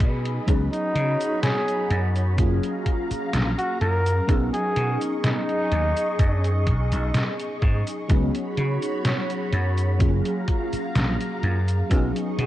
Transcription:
Already playing: F#3 B3 C#4 D#4 G#4 D#5 B5
0.00 B2, kick, closed hi-hat
0.25 closed hi-hat
0.46 C#2 F#3 B3 C#4 D#4 F#4 G#4 C#5 B5, kick, closed hi-hat, cabasa
0.73 D#4, closed hi-hat, cabasa
0.95 C#3, closed hi-hat
1.21 closed hi-hat, cabasa
1.43 G#4, snare, closed hi-hat, cabasa
1.68 closed hi-hat, cabasa
1.91 F#2, closed hi-hat
2.16 closed hi-hat, cabasa
2.37 F#1 F#3 A#3 C#4 F4 G#4 F5 A#5, kick, closed hi-hat, cabasa
2.63 closed hi-hat, cabasa
2.86 kick, closed hi-hat
3.11 muted slap bass stroke, closed hi-hat, cabasa
3.33 A#1, snare, closed hi-hat, cabasa
3.58 F#4, closed hi-hat, cabasa
3.81 F#2 A#4, closed hi-hat
4.06 closed hi-hat, cabasa
4.27 B1 F#3 B3 C#4 D#4 G#4 D#5 C#6, kick, closed hi-hat, cabasa
4.54 G#4, closed hi-hat, cabasa
4.76 B2, closed hi-hat
5.01 closed hi-hat, cabasa
5.24 D#4, snare, closed hi-hat, cabasa
5.49 closed hi-hat, cabasa
5.72 D#2, closed hi-hat
5.97 closed hi-hat, cabasa
6.19 F#2, kick, closed hi-hat, cabasa
6.44 closed hi-hat, cabasa
6.67 B1, kick, closed hi-hat
6.92 B1, closed hi-hat, cabasa
7.14 snare, closed hi-hat, cabasa
7.40 closed hi-hat, cabasa
7.62 G#2, kick, closed hi-hat
7.87 closed hi-hat, cabasa
8.08 C#2 F#3 B3 C#4 D#4 F#4 G#4 C#5 B5, kick, closed hi-hat, cabasa
8.35 closed hi-hat, cabasa
8.57 C#3, closed hi-hat
8.82 closed hi-hat, cabasa
9.05 snare, closed hi-hat, cabasa
9.30 closed hi-hat, cabasa
9.53 F#2, closed hi-hat
9.78 closed hi-hat, cabasa
9.99 F#1 F#3 A#3 C#4 F4 G#4 F5 A#5, kick, closed hi-hat, cabasa
10.25 closed hi-hat, cabasa
10.48 kick, closed hi-hat
10.73 muted slap bass stroke, closed hi-hat, cabasa
10.95 A#1, snare, closed hi-hat, cabasa
11.20 closed hi-hat, cabasa
11.43 F#2, closed hi-hat
11.68 closed hi-hat, cabasa
11.89 B1 F#3 B3 C#4 D#4 G#4 D#5 C#6, kick, closed hi-hat, cabasa
12.16 closed hi-hat, cabasa
12.38 B2, closed hi-hat

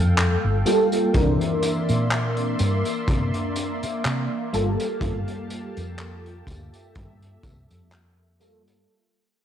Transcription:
Already playing: F2 G3 A#3 F4 A4 F5 G5
0.18 clap, closed hi-hat, tambourine
0.44 G1
0.66 G3 A#3 F4 A4, closed hi-hat, tambourine
0.92 closed hi-hat, tambourine
1.13 C2 E3 A#3 C4 D4 A#4 D5 E5 C6, kick, closed hi-hat, tambourine
1.41 closed hi-hat
1.62 closed hi-hat, tambourine
1.89 A#2, closed hi-hat, tambourine
2.11 clap, closed hi-hat, tambourine
2.37 closed hi-hat
2.59 G2, closed hi-hat, tambourine
2.85 closed hi-hat, tambourine
3.08 C3, kick, closed hi-hat, tambourine
3.34 closed hi-hat
3.56 closed hi-hat, tambourine
3.83 muted fretless electric bass stroke, closed hi-hat, tambourine
4.05 C3, clap, closed hi-hat, tambourine
4.53 G1 G3 A#3 F4 G4 A4 F5 A5, closed hi-hat, tambourine
4.80 closed hi-hat, tambourine
5.00 G1 G3 A#3 F4 A4, kick, closed hi-hat, tambourine
5.28 closed hi-hat
5.50 closed hi-hat, tambourine
5.76 F2, closed hi-hat, tambourine
5.98 clap, closed hi-hat, tambourine
6.26 closed hi-hat
6.47 D2 E5, kick, closed hi-hat, tambourine
6.73 closed hi-hat, tambourine
6.95 G2, kick, closed hi-hat, tambourine
7.22 closed hi-hat
7.43 C2, kick, closed hi-hat, tambourine
7.70 F2, closed hi-hat, tambourine
7.92 clap, closed hi-hat, tambourine
8.40 G3 A#3 F4 A4, closed hi-hat, tambourine
8.67 G2, closed hi-hat, tambourine

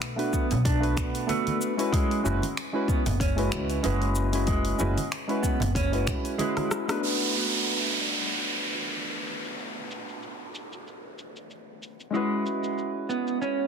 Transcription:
0.02 finger snap, open hi-hat, shaker
0.16 A3 B3 D4 F#4 B4, open hi-hat
0.33 B3, kick, shaker
0.51 B1, open hi-hat, low conga, shaker
0.65 D4, kick, open hi-hat, shaker
0.80 A3 B3 D4 F#4 B4, open hi-hat
0.97 finger snap, kick, shaker
1.15 open hi-hat, shaker
1.27 A3 B3 D4 F#4 B4, open hi-hat, high conga, shaker
1.47 open hi-hat, high conga
1.62 shaker
1.77 G#3 C#4 E4 F#4 B4, open hi-hat, shaker
1.92 G#3, kick, open hi-hat, shaker
2.11 open hi-hat
2.23 F#1 G#3 C#4 E4 F#4 B4, shaker
2.42 open hi-hat, high conga, shaker
2.57 finger snap, open hi-hat, shaker
2.73 G#3 C#4 E4 F#4 B4
2.88 B3, kick, shaker
3.06 F#1, open hi-hat, low conga, shaker
3.20 C#4, kick, open hi-hat, shaker
3.36 G#3 C#4 E4 F#4 B4, open hi-hat
3.52 C#2, finger snap, shaker
3.70 open hi-hat, shaker
3.83 F#1 G#3 C#4 E4 F#4 B4, open hi-hat, shaker
4.02 open hi-hat
4.15 shaker
4.32 G#3 C#4 E4 F#4 B4, open hi-hat, shaker
4.47 G#3, kick, open hi-hat, shaker
4.65 open hi-hat
4.78 F#1 G#3 C#4 E4 F#4 B4, shaker
4.97 open hi-hat, high conga, shaker
5.12 finger snap, open hi-hat, shaker
5.28 G#3 C#4 E4 F#4 B4, open hi-hat
5.43 B3, kick, shaker
5.60 F#1, open hi-hat, low conga, shaker
5.75 C#4, kick, open hi-hat, shaker
5.92 G#3 C#4 E4 F#4 B4, open hi-hat
6.07 finger snap, kick, low conga, shaker
6.25 open hi-hat, shaker
6.38 G#3 C#4 E4 F#4 B4, open hi-hat, high conga, shaker
6.57 cross-stick, open hi-hat, high conga
6.71 cross-stick, shaker
6.88 A3 B3 D4 F#4 B4, cross-stick, open hi-hat, shaker
7.01 A3 B3 D4, downlifter, shaker
7.05 F#4 B4
7.35 shaker
7.53 shaker
7.99 shaker
8.32 shaker
8.63 shaker
8.81 shaker
8.95 shaker
9.27 shaker
9.45 shaker
9.59 shaker
9.91 shaker
10.09 shaker
10.23 shaker
10.55 shaker
10.72 shaker
10.87 shaker
11.18 shaker
11.36 shaker
11.50 shaker
11.83 shaker
12.00 shaker
12.10 G#3 C#4 E4
12.15 F#4 B4, shaker
12.46 shaker
12.64 shaker
12.78 shaker
13.09 B3, shaker
13.27 shaker
13.42 C#4, shaker

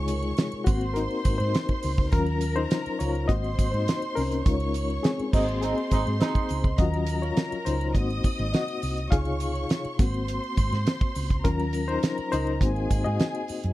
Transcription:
Already playing: C#2 C3 G#3 D#4 F4 G#4 C#5 C#6
0.07 A#4, closed hi-hat, triangle
0.23 muted triangle
0.37 snare, closed hi-hat, muted triangle
0.52 muted fingered electric bass stroke, muted triangle
0.64 G#1 A#3 C4 F#4 C5 C6, kick, closed hi-hat, triangle
0.81 muted triangle
0.94 D#4 A#4, closed hi-hat, muted triangle
1.11 muted triangle
1.25 G#1, kick, closed hi-hat, triangle
1.38 G#2 D#4 C5, muted triangle
1.54 snare, closed hi-hat, muted triangle
1.69 kick, muted triangle
1.83 C#2, open hi-hat, triangle
1.97 kick, muted triangle
2.12 D#2 F#3 C#4 F4 A#4 A#5, kick, closed hi-hat, muted triangle
2.26 muted triangle
2.41 closed hi-hat, triangle
2.56 D#4 C5, muted triangle
2.71 snare, closed hi-hat, muted triangle
2.86 muted fingered electric bass stroke, muted triangle
2.99 C#2 F4 C#5, closed hi-hat, triangle
3.15 muted triangle
3.28 G#1 A#3 C4 F#4 C5 D#5 C6, kick, closed hi-hat, muted triangle
3.44 muted triangle
3.59 G#1, kick, closed hi-hat, triangle
3.72 G#2 D#4 C5, muted triangle
3.88 snare, closed hi-hat, muted triangle
4.02 muted triangle
4.15 C2 C#4 A#4, open hi-hat, triangle
4.32 closed hi-hat, muted triangle
4.45 C#2 G#3 D#4 F4 C#5 C#6, kick, closed hi-hat, muted triangle
4.60 muted triangle
4.74 closed hi-hat, triangle
4.90 muted triangle
5.03 C4 G#4, snare, closed hi-hat, muted triangle
5.19 muted fingered electric bass stroke, muted triangle
5.32 G#1 G#3 A#3 C4 D#4 F#4 C5 D#5 C6, kick, snare, crash, triangle
5.49 muted triangle
5.61 G#3 C4 D#4 G#4, closed hi-hat, muted triangle
5.78 muted triangle
5.91 G#1 G#3 C4 D#4 C5, kick, closed hi-hat, triangle
6.07 G#2, muted triangle
6.21 G#3 C4 D#4, snare, closed hi-hat, muted triangle
6.35 kick, muted triangle
6.49 C#2, closed hi-hat, triangle
6.64 kick, muted triangle
6.78 D#2 F#3 C#4 F4 F#4 A#4 D#5 A#5, kick, closed hi-hat, muted triangle
6.94 muted triangle
7.07 closed hi-hat, triangle
7.22 F4 C#5, muted triangle
7.37 snare, closed hi-hat, muted triangle
7.52 muted fingered electric bass stroke, muted triangle
7.65 C#2 D#4 C5, closed hi-hat, triangle
7.81 muted triangle
7.94 G#1 A#3 C4 F#4 D#5 D#6, kick, closed hi-hat, muted triangle
8.10 muted triangle
8.24 muted fingered electric bass stroke, kick, closed hi-hat, triangle
8.39 G#1, muted triangle
8.53 F#4 D#5, snare, closed hi-hat, muted triangle
8.68 muted triangle
8.82 C2, open hi-hat, triangle
8.97 closed hi-hat, muted triangle
9.11 C#2 C3 D#4 F4 G#4 C#5 F5 C#6, kick, closed hi-hat, muted triangle
9.25 muted triangle
9.40 closed hi-hat, triangle
9.55 muted triangle
9.69 snare, closed hi-hat, muted triangle
9.85 muted fingered electric bass stroke, muted triangle
9.99 G#1 A#3 C4 F#4 C5 C6, kick, snare, closed hi-hat, triangle
10.14 muted triangle
10.28 closed hi-hat, muted triangle
10.44 muted triangle
10.57 G#1, kick, closed hi-hat, triangle
10.72 G#2, snare, muted triangle
10.87 snare, closed hi-hat, muted triangle
11.01 kick, muted triangle
11.15 C#2, open hi-hat, triangle
11.30 kick, closed hi-hat, muted triangle
11.44 D#2 F#3 C#4 F4 A#4 A#5, kick, closed hi-hat, muted triangle
11.60 muted triangle
11.73 closed hi-hat, triangle
11.88 D#4 C5, muted triangle
12.03 snare, closed hi-hat, muted triangle
12.18 muted fingered electric bass stroke, muted triangle
12.32 C#2 D#4 A#4 C5, closed hi-hat, triangle
12.47 muted triangle
12.52 D#5
12.61 G#1 A#3 C4 F#4 G#4 G#5, kick, closed hi-hat, muted triangle
12.73 F5, muted triangle
12.90 G#1, kick, closed hi-hat, triangle
13.04 G#2 F#4 D#5, muted triangle
13.20 snare, closed hi-hat, muted triangle
13.35 muted triangle
13.48 muted fingered electric bass stroke, open hi-hat, triangle
13.63 F#2, closed hi-hat, muted triangle

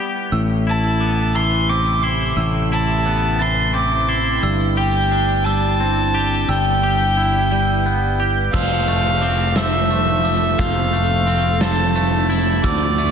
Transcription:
Already playing: G3 B3 E4
0.00 G4
0.31 A1 A2 C3 A3 E6
0.67 E4 A5
1.00 B3 D6
1.35 E3 C6 E6
1.69 C4 D6
2.03 E4 C6 D6
2.36 A1 A2 E4 E6
2.72 E4 A5
3.06 B3 E6
3.39 E3 C6 A6
3.74 C4 D6
4.08 E4 C6 A6
4.43 G1 G2 G3 D4 E6
4.77 G4 G5
5.11 D4 D6
5.45 G3 A5 E6
5.80 C4
6.14 G4 D6
6.48 G1 G3 E4 B4 G5 E6
6.83 G4
7.17 E4 E6
7.51 G3 G6
7.86 B3
8.20 G4 G6
8.53 F1 F3 F4 A4 F5 E6, kick, crash
8.88 A3, closed hi-hat
9.21 C4 D6, closed hi-hat
9.56 F3 E5 E6, snare, closed hi-hat
9.90 A3, closed hi-hat
10.24 D6, closed hi-hat
10.58 F1 F3 C4 F5 E6, kick, closed hi-hat
10.93 A3, closed hi-hat
11.27 C4 E6, closed hi-hat
11.61 F3 A5 A6, snare, closed hi-hat
11.95 A3, closed hi-hat
12.29 E4 A6, closed hi-hat
12.63 D2 D3 C4 F4 D5 E6, kick, closed hi-hat
12.98 A3, closed hi-hat

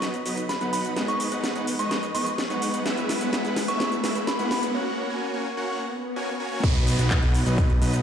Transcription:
Already playing: B1 F#3 B3 D#4 B4 D#5 C#6, riser
0.02 snare, closed hi-hat, cabasa
0.14 closed hi-hat, cabasa
0.26 B1 F#3 B3 D#4 B4 D#5, open hi-hat, cabasa
0.37 closed hi-hat, cabasa
0.49 B5, snare, closed hi-hat, cabasa
0.61 B1 F#3 B3 D#4 B4 F#5, closed hi-hat, cabasa
0.73 B5, open hi-hat, cabasa
0.85 closed hi-hat, cabasa
0.96 G#1 G#3 B3 D#4 B4 D#5, snare, closed hi-hat, cabasa
1.08 C#6, closed hi-hat, cabasa
1.20 open hi-hat, cabasa
1.32 G#1 G#3 B3 D#4 B4 F#5, closed hi-hat, cabasa
1.44 snare, closed hi-hat, cabasa
1.56 G#1 G#3 B3 D#4 B4 F#5, closed hi-hat, cabasa
1.67 open hi-hat, cabasa
1.79 G#1 G#3 B3 D#4 B4 D#5 C#6, closed hi-hat, cabasa
1.91 snare, closed hi-hat, cabasa
2.03 closed hi-hat, cabasa
2.15 G#1 G#3 B3 D#4 B4 D#5 C#6, open hi-hat, cabasa
2.26 closed hi-hat, cabasa
2.38 snare, closed hi-hat, cabasa
2.50 G#2 G#3 B3 D#4 B4 F#5, closed hi-hat, cabasa
2.62 open hi-hat, cabasa
2.74 closed hi-hat, cabasa
2.85 E1 G#3 B3 E4 B4 E5, snare, closed hi-hat, cabasa
2.97 closed hi-hat, cabasa
3.09 snare, open hi-hat, cabasa
3.21 E1 G#3 B3 E4 B4 F#5, closed hi-hat, cabasa
3.33 snare, closed hi-hat, cabasa
3.45 E1 G#3 B3 E4 B4 F#5, closed hi-hat, cabasa
3.56 snare, open hi-hat, cabasa
3.68 E1 G#3 B3 E4 B4 E5 C#6, closed hi-hat, cabasa
3.80 snare, closed hi-hat, cabasa
3.92 closed hi-hat, cabasa
4.04 E1 G#3 B3 E4 B4 E5, snare, open hi-hat, cabasa
4.16 closed hi-hat, cabasa
4.27 B5, snare, closed hi-hat, cabasa
4.39 E2 G#3 B3 E4 B4 F#5, closed hi-hat, cabasa
4.51 B5, snare, open hi-hat, cabasa
4.63 closed hi-hat, cabasa
4.75 A#3 C#4 F#4 C#5 F#5
5.10 A#3 C#4 F#4 C#5 G#5
5.34 A#3 C#4 F#4 C#5 G#5
5.57 A#3 C#4 F#4 C#5 F#5
5.69 swell
6.16 A#3 C#4 F#4 C#5 G#5
6.40 A#3 C#4 F#4 C#5 G#5
6.52 A#3 C#4 F#4 C#5 G#5
6.64 B1 F#3 B3 D#4 B4 D#5, kick, closed hi-hat, crash, downlifter, cabasa
6.75 closed hi-hat
6.87 open hi-hat, cabasa
6.99 B1 F#3 B3 D#4 B4 F#5, closed hi-hat, cabasa
7.11 kick, clap, closed hi-hat, cabasa
7.23 B1 F#3 B3 D#4 B4 F#5, closed hi-hat
7.34 open hi-hat, cabasa
7.46 B1 F#3 B3 D#4 B4 D#5, closed hi-hat, cabasa
7.58 kick, closed hi-hat, cabasa
7.70 closed hi-hat
7.82 B1 F#3 B3 D#4 B4 D#5, open hi-hat, cabasa
7.93 closed hi-hat, cabasa

